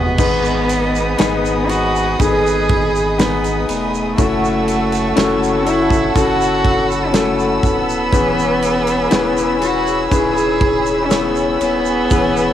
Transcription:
Already playing: sub bass F#1, grand piano C3 C4 F#4 G#4, cello B3, string section F#4 D#5 G#5 D#6
0.18 sub bass G#1, grand piano G#2 B3 D#4 G#4 B4, string section G#4 D#5 B5 D#6, kick, crash, shaker
0.45 shaker
0.69 ride, shaker
0.96 shaker
1.18 sub bass G#1, grand piano B3 D#4 G#4 B4, snare, ride, shaker
1.45 shaker
1.69 cello F#4, ride, shaker
1.96 shaker
2.19 sub bass G#1, grand piano B3 D#4 G#4 A4, cello G#4, kick, ride, shaker
2.28 grand piano B4
2.47 shaker
2.69 kick, ride
2.96 shaker
3.18 grand piano B3 D#4 G#4 B4, cello B3, snare, ride, shaker
3.44 ride, shaker
3.69 sub bass E1, cello A3, ride, shaker
3.95 shaker
4.17 sub bass F#1, grand piano C#4 E4 F#4 A4, string section A4 F#5 C#6 E6, kick, ride, shaker
4.45 shaker
4.68 ride, shaker
4.92 ride, shaker
5.16 sub bass F#1, grand piano C#4 E4 F#4 A4, snare, ride, shaker
5.44 shaker
5.67 cello E4, ride, shaker
5.90 kick, shaker
6.15 sub bass F#1, grand piano C#4 E4 F#4 A4, cello F#4, string section B5, kick, ride, shaker
6.41 shaker
6.65 kick, ride
6.91 shaker
7.13 cello A3, grand piano C#4 E4 F#4 A4, snare, ride, shaker
7.40 shaker
7.63 sub bass D#1, cello B3, kick, ride, shaker
7.90 shaker
8.12 sub bass E1, grand piano E3 C#4 E4 G#4 B4, string section G#4 C#5, kick, ride, shaker
8.39 shaker
8.62 ride, shaker
8.87 ride, shaker
9.11 sub bass E1, grand piano C#4 E4 G#4 B4, snare, ride, shaker
9.37 shaker
9.62 cello F#4, ride, shaker
9.87 shaker
10.10 sub bass E1, grand piano C#4 D#4 G#4 B4, cello G#4, kick, ride, shaker
10.17 grand piano E4
10.37 shaker
10.61 kick, ride
10.86 shaker
11.05 cello C#4
11.09 cello B3, grand piano C#4 E4 G#4 C#5, snare, ride, shaker
11.36 shaker
11.61 sub bass D#1, cello B3, ride, shaker
11.85 shaker
12.10 sub bass E1, grand piano E3 C#4 E4 G#4 B4, kick, ride, shaker
12.37 shaker

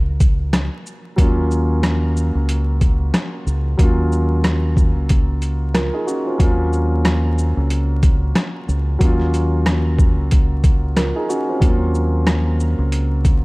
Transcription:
Already playing: fingered electric bass C#2
0.20 kick, closed hi-hat, shaker
0.53 cross-stick, snare, closed hi-hat
0.86 shaker
1.16 fingered electric bass D#2, grand piano F#3 A#3, kick, closed hi-hat
1.20 grand piano C#4 F4
1.51 shaker
1.83 cross-stick, snare, closed hi-hat
2.17 shaker
2.35 fingered electric bass C#2
2.49 closed hi-hat
2.81 kick, closed hi-hat, shaker
3.14 cross-stick, snare, closed hi-hat
3.47 fingered electric bass C#2, shaker
3.77 fingered electric bass D#2, grand piano F#3 A#3, kick, closed hi-hat
3.81 grand piano C#4 F4
4.12 shaker
4.44 cross-stick, snare, closed hi-hat
4.77 kick, shaker
4.96 fingered electric bass C#2
5.09 kick, closed hi-hat
5.42 closed hi-hat, shaker
5.74 grand piano F4 A#4, cross-stick, snare, closed hi-hat
5.94 grand piano D#4 G#4
6.07 grand piano C#4 F#4, shaker
6.27 grand piano C4 F4
6.38 fingered electric bass D#2, grand piano F#3 A#3 C#4, kick, closed hi-hat
6.44 grand piano F4
6.73 shaker
7.05 cross-stick, snare, closed hi-hat
7.38 shaker
7.57 fingered electric bass C#2
7.70 closed hi-hat
8.03 kick, closed hi-hat, shaker
8.35 cross-stick, snare, closed hi-hat
8.68 fingered electric bass C#2, shaker
8.99 fingered electric bass D#2, grand piano F#3 A#3 C#4, kick, closed hi-hat
9.05 grand piano F4
9.20 snare
9.34 closed hi-hat, shaker
9.66 cross-stick, snare, closed hi-hat
9.98 kick, shaker
10.18 fingered electric bass C#2
10.31 kick, closed hi-hat
10.64 kick, closed hi-hat, shaker
10.96 grand piano F4 A#4, cross-stick, snare, closed hi-hat
11.16 grand piano D#4 G#4
11.29 grand piano C#4 F#4, shaker
11.49 grand piano C4 F4
11.59 fingered electric bass D#2, grand piano F#3 A#3, kick, closed hi-hat
11.63 grand piano C#4 F4
11.95 shaker
12.27 cross-stick, snare, closed hi-hat
12.60 shaker
12.79 fingered electric bass C#2
12.92 closed hi-hat
13.25 kick, closed hi-hat, shaker

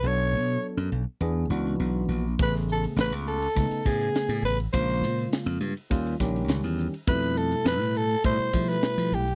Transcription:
0.03 slap bass B1, tine electric piano F#3 B3 D4 A4
0.07 soprano saxophone C#5
0.33 slap bass B2
0.77 slap bass F#2
0.92 slap bass B1
1.21 slap bass E2, tine electric piano E3 B3 D4 G#4
1.50 slap bass C#2, tine electric piano E3 B3 D4 F#4
1.79 slap bass B1
2.08 slap bass A#1
2.39 slap bass A1, tine electric piano C#3 A3 B3 G#4, soprano saxophone B4, kick, hi-hat pedal, ride
2.55 snare, ride
2.69 soprano saxophone A4, hi-hat pedal
2.84 ride
2.96 slap bass A1, soprano saxophone B4, snare, hi-hat pedal, ride
3.12 slap bass C#2, ride
3.27 soprano saxophone A4, hi-hat pedal
3.42 ride
3.55 slap bass C#2, tine electric piano C#3 A3 B3 D#4, kick, hi-hat pedal, ride
3.71 muted slap bass stroke, ride
3.85 slap bass A2, tine electric piano C#3 A3 B3 G#4, soprano saxophone G#4, kick, snare, hi-hat pedal
4.01 ride
4.15 snare, hi-hat pedal, ride
4.29 slap bass A2, ride
4.43 slap bass A1, soprano saxophone B4, snare, hi-hat pedal
4.60 ride
4.73 slap bass A#1, tine electric piano C#3 G#3 A#3 F4, soprano saxophone C5, kick, hi-hat pedal, ride
4.89 snare, ride
5.01 slap bass A#2, snare, hi-hat pedal
5.18 ride
5.32 snare, hi-hat pedal, ride
5.46 slap bass F2, ride
5.61 slap bass G2, hi-hat pedal
5.77 ride
5.90 slap bass D#2, tine electric piano D#3 G3 C#4 F4, kick, hi-hat pedal, ride
6.06 ride
6.20 slap bass A#1, tine electric piano D#3 G3 C#4 G4, kick, snare, hi-hat pedal
6.36 ride
6.48 slap bass C#2, snare, hi-hat pedal, ride
6.64 slap bass E2, ride
6.78 hi-hat pedal
6.94 ride
7.07 slap bass F2, tine electric piano B2 G3 A3 E4, soprano saxophone B4, kick, hi-hat pedal, ride
7.23 ride
7.36 soprano saxophone A4, hi-hat pedal
7.52 ride
7.65 slap bass F2, soprano saxophone B4, snare, hi-hat pedal, ride
7.81 slap bass A2, snare, ride
7.95 soprano saxophone A4, hi-hat pedal
8.10 ride
8.24 slap bass A2, tine electric piano B2 G3 A3 E4, soprano saxophone C5, kick, hi-hat pedal, ride
8.39 muted slap bass stroke, ride
8.53 tine electric piano B2 G3 A3 E4, slap bass F3, kick, hi-hat pedal
8.69 soprano saxophone B4, snare, ride
8.82 snare, hi-hat pedal, ride
8.98 slap bass F3, ride
9.12 slap bass B1, soprano saxophone G4, hi-hat pedal
9.27 ride

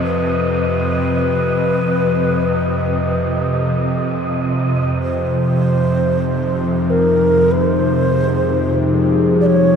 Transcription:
Already playing: synth drone F2 C3, synth texture D#5
0.03 shakuhachi B4
5.02 synth drone F2 C3, ambient pad F3, shakuhachi C5
5.06 synth texture D#4
5.29 ambient pad D#4
5.54 ambient pad G#4
6.90 shakuhachi A#4
7.51 shakuhachi B4
7.62 shakuhachi C5
8.11 ambient pad G4
9.11 ambient pad A#4
9.41 shakuhachi D5
9.46 shakuhachi C#5

